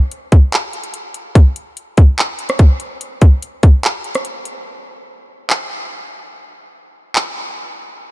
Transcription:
0.11 closed hi-hat
0.32 kick, closed hi-hat
0.52 clap, closed hi-hat
0.73 closed hi-hat
0.84 closed hi-hat
0.94 closed hi-hat
1.14 closed hi-hat
1.35 kick, closed hi-hat
1.56 closed hi-hat
1.77 closed hi-hat
1.97 kick, closed hi-hat
2.18 clap, closed hi-hat
2.39 closed hi-hat
2.49 cross-stick, closed hi-hat
2.59 kick, closed hi-hat
2.80 closed hi-hat
3.01 closed hi-hat
3.22 kick, closed hi-hat
3.42 closed hi-hat
3.63 kick, closed hi-hat
3.83 clap, closed hi-hat
4.04 closed hi-hat
4.15 cross-stick, closed hi-hat
4.25 closed hi-hat
4.45 closed hi-hat
5.50 clap
7.16 clap

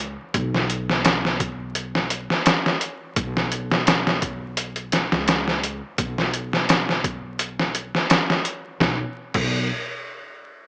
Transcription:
Already playing: C#2
0.34 B1, kick, closed hi-hat
0.55 snare
0.70 closed hi-hat
0.90 snare
1.05 snare, closed hi-hat
1.25 snare
1.40 kick, closed hi-hat
1.75 closed hi-hat
1.95 snare
2.10 closed hi-hat
2.30 snare
2.46 snare, closed hi-hat
2.66 snare
2.81 closed hi-hat
3.16 B1, kick, closed hi-hat
3.37 snare
3.52 closed hi-hat
3.71 snare
3.87 snare, closed hi-hat
4.07 snare
4.22 kick, closed hi-hat
4.57 closed hi-hat
4.76 closed hi-hat
4.92 snare, closed hi-hat
5.12 C#2, snare
5.28 snare, closed hi-hat
5.48 snare
5.64 closed hi-hat
5.98 B1, kick, closed hi-hat
6.18 snare
6.34 closed hi-hat
6.53 snare
6.69 snare, closed hi-hat
6.89 snare
7.04 kick, closed hi-hat
7.39 closed hi-hat
7.59 snare
7.75 closed hi-hat
7.95 snare
8.10 snare, closed hi-hat
8.30 snare
8.45 closed hi-hat
8.80 B1, kick, snare
9.34 B1, kick, crash

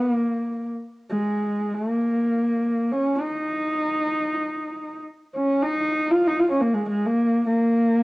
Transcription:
Already playing: B3
0.13 A#3
1.10 G#3
1.74 A#3
2.92 C#4
3.20 D#4
5.35 C#4
5.62 D#4
6.11 F4
6.26 D#4
6.39 F4
6.50 C#4
6.61 A#3
6.73 G#3
6.89 G#3
7.06 A#3
7.46 A#3

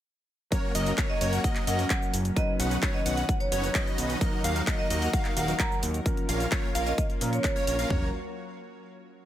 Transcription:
0.51 F#3 A#3 C#4 F#4 A#4 C#5, kick, closed hi-hat, shaker
0.75 F#1 A#3 C#4 F#4 A#4 D#5, open hi-hat, shaker
0.86 closed hi-hat, shaker
0.98 A#3 C#4 F#4 A#4 C#5, kick, clap, closed hi-hat, shaker
1.10 D#5
1.21 F#1 A#3 C#4 F#4 A#4 C#5, open hi-hat, shaker
1.33 F#5, closed hi-hat, shaker
1.44 A#3 C#4 F#4 A#4 D#5, kick, closed hi-hat, shaker
1.55 clap, closed hi-hat
1.67 F#2 A#3 C#4 F#4 A#4 D#5 F#5, open hi-hat, shaker
1.78 F#3 A#3 C#4 A#4, closed hi-hat, shaker
1.90 kick, clap, closed hi-hat, shaker
2.02 shaker
2.13 F#1, open hi-hat, shaker
2.25 closed hi-hat, shaker
2.35 D#3 F#3 B3 C#4 D#4 B4 D#5, kick, closed hi-hat, shaker
2.60 B1 C#4 D#4 F#4 B4 F#5, open hi-hat, shaker
2.71 closed hi-hat, shaker
2.83 C#4 D#4 F#4 B4 C#5, kick, clap, closed hi-hat, shaker
2.94 D#5
3.06 B1 C#4 D#4 F#4 B4 F#5, open hi-hat, shaker
3.17 F#5, closed hi-hat, shaker
3.29 kick, closed hi-hat, shaker
3.40 C#5, closed hi-hat
3.52 F#1 C#4 D#4 F#4 B4 C#5, open hi-hat, shaker
3.62 F#3 C#4 D#4 B4, closed hi-hat, shaker
3.75 C#4 D#4 F#4 B4 D#5, kick, clap, closed hi-hat, shaker
3.87 shaker
3.98 B1, open hi-hat, shaker
4.10 closed hi-hat, shaker
4.20 F#3 A#3 D#4 F#4 A#4 D#5, kick, closed hi-hat, shaker
4.44 D#2 A#3 D#4 F#4 A#4 F5, open hi-hat, shaker
4.56 closed hi-hat, shaker
4.67 A#3 D#4 F#4 A#4 D#5, kick, clap, closed hi-hat, shaker
4.79 D#5
4.90 D#2 A#3 D#4 F#4 A#4 D#5, open hi-hat, shaker
5.02 F#5, closed hi-hat, shaker
5.13 A#3 D#4 F#4 A#4 F5, kick, closed hi-hat, shaker
5.25 clap, closed hi-hat
5.36 D#1 A#3 D#4 F#4 A#4 F5 F#5, open hi-hat, shaker
5.47 F#3 A#3 D#4 A#4, closed hi-hat, shaker
5.59 A#5, kick, clap, closed hi-hat, shaker
5.72 shaker
5.83 D#2, open hi-hat, shaker
5.94 closed hi-hat, shaker
6.05 F3 A#3 C#4 F4 A#4, kick, closed hi-hat, shaker
6.17 closed hi-hat
6.29 A#1 A#3 C#4 F4 A#4 F5, open hi-hat, shaker
6.40 closed hi-hat, shaker
6.52 A#3 C#4 F4 A#4 C#5, kick, clap, closed hi-hat, shaker
6.75 A#1 A#3 C#4 F4 A#4 F5, open hi-hat, shaker
6.86 D#5, closed hi-hat, shaker
6.98 kick, closed hi-hat, shaker
7.10 closed hi-hat
7.20 A#2 F3 A#3 C#4 A#4, open hi-hat, shaker
7.33 C#5, closed hi-hat, shaker
7.44 kick, clap, closed hi-hat, shaker
7.56 A#3 C#4 F4 A#4 C#5, shaker
7.67 A#1 A#3 C#4 F4 A#4 C#5, open hi-hat, shaker
7.79 A#3 C#4 F4 A#4 F5, closed hi-hat, shaker
7.89 F#1 F#3 A#3 C#4 F#4 A#4 C#5, kick, floor tom

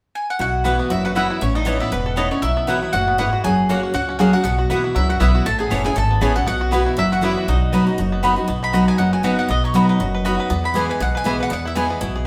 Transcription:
0.15 G#5
0.30 F#5
0.39 B1 B2 E4 F#4 F#5
0.64 E3 B3 E4 F#4 B4 F#5
0.79 B3
0.90 F#1 F#2 E4 F#4 E5
1.05 F#4 B4 F#5
1.15 E3 B3 E4 F#4 B4 E5 F#5
1.30 E4
1.41 A1 A2 C#4 E4 C#5
1.55 D#4 A4 D#5
1.65 E3 B3 C#4 E4 B4 C#5 A5
1.80 B3 E4 E5
1.92 E1 G#2 B3 B4
2.06 A4
2.16 A2 B3 D#4 E4 C#5 D#5 A5
2.31 C#4 E4 C#5
2.42 B1 B2 F#3 E4 E5
2.57 B3
2.67 E3 F#3 B3 E4 F#4 B4 F#5
2.83 E4
2.93 F#1 A2 F#4 F#5
3.08 B3
3.18 G#2 B3 E4 F#4 B4 F#5
3.33 F#4
3.44 F#1 F#2 F#3 G#4 G#5
3.69 F#3 A#3 C#4 F#4 C#5 F#5
3.83 F#4
3.94 C#2 C#3 F#4 F#5
4.09 C#4
4.19 F#3 A#3 C#4 F#4 G#4 C#5 F#5 G#5
4.33 C#4 F#4 F#5
4.44 B1 B2 B3 F#4 F#5
4.59 F#4
4.70 D#2 E3 B3 E4 F#4 B4 F#5
4.84 E4
4.95 C#2 F#2 F#3 E4 E5
5.09 F#4 F#5
5.20 B1 E3 B3 E4 F#4 B4 E5 F#5
5.35 F#4
5.46 A1 A2 A3 A4 A5
5.59 B3 G#4 G#5
5.70 F#1 E3 A3 B3 C#4 E4 C#5 A5
5.84 C#4 E4 G#4 G#5
5.96 G#1 E2 A4 A5
6.11 B3
6.21 A1 E3 B3 C#4 E4 G#4 C#5 G#5 A5
6.36 C#4 E4 F#4 A4 F#5
6.47 B1 B2 B3 F#4 F#5
6.61 F#4
6.71 E3 B3 E4 F#4 B4 F#5
6.86 E4
6.97 F#1 F#2 F#3 E4 E5
7.12 F#4 F#5
7.21 E3 B3 E4 F#4 B4 E5 F#5
7.38 F#4
7.48 B1 B2 F#3 D#4 D#5
7.72 F#3 B3 D#4 F#4 D#5 B5
7.87 D#4 F#4
7.98 F#1 F#2 F#4
8.12 B3
8.23 F#3 B3 D#4 F#4 D#5 B5
8.36 D#4 F#4
8.48 B1 B2 B3
8.63 D#4 B5
8.73 F#3 B3 D#4 F#4 D#5 B5
8.88 B3 G#5
8.98 F#1 F#2 D#4 F#5
9.13 F#4 G#5
9.23 F#3 B3 D#4 F#4 B4 D#5 F#5 B5
9.39 B3 F#5
9.48 B1 B2 B3 D#5
9.64 D#4 C#5
9.74 F#3 B3 D#4 F#4 D#5 B5
9.89 B4 D#5
9.99 F#1 F#2 F#4
10.14 B4
10.25 F#3 B3 D#4 F#4 D#5 B5
10.40 B4
10.50 E2 B3
10.64 E4 B5
10.74 E3 G#3 B3 E4 G#4 B4 G#5
10.89 B4 G#5
11.00 B1 B2 G#4 F#5
11.15 B4 G#5
11.24 E3 G#3 B3 E4 G#4 B4 G#5
11.40 B4 F#5
11.50 E2 B3 F#5
11.65 E4 E5
11.75 E3 G#3 B3 E4 G#4 B4 G#5
11.90 B3
12.01 B1 B2 E4
12.16 G#4

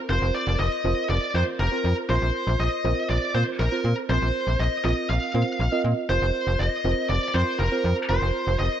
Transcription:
0.09 F1 C4 F4 A#4 C5
0.22 F1
0.35 D5
0.47 F1
0.59 F1 D#5
0.84 F1 C4 F4 A#4 C5
1.09 F1 D5
1.34 F2 C4 F4 A#4 C5
1.59 F1 A#4
1.72 C4 F4 A#4 C5
1.84 F2
2.09 A#1 C4 F4 A#4 C5
2.22 A#1
2.47 A#1
2.60 A#1 D#5
2.84 A#1 C4 F4 A#4 C5
3.10 A#1 D5
3.34 A#2 C4 F4 A#4 C5
3.59 A#1 A#4
3.72 C4 F4 A#4 C5
3.84 A#2
4.09 A#1 C4 F4 A#4 C5
4.22 A#1
4.47 A#1
4.59 A#1 D#5
4.84 A#1 C4 F4 A#4 D#5
5.09 A#1 F5
5.34 A#2 C4 F4 A#4 C5
5.59 A#1
5.72 C4 F4 A#4 D#5
5.84 A#2
6.09 F1 C4 F4 A#4 C5
6.22 F1
6.47 F1
6.59 F1 D#5
6.84 F1 C4 F4 A#4 C5
7.09 F1 D5
7.28 D5
7.34 F2 C4 F4 A#4 C5
7.59 F1 A#4
7.72 C4 F4 A#4 C5
7.84 F2
8.09 F1 C4 F4 A#4 C5
8.22 F1
8.47 F1
8.59 F1 D#5

